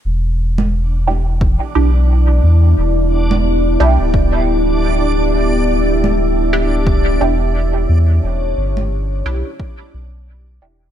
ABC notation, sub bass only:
X:1
M:4/4
L:1/16
Q:"Swing 16ths" 1/4=88
K:Edor
V:1 name="Sub bass" clef=bass
E,,,8- E,,, z B,,,4 E,,2 | E,,,6 B,,, D,,,8- D,,,- | D,,,8- D,,,2 E,,,4 E,,2 | E,,,2 G,,,4 B,,, z3 B,,,4 E,,,2 |]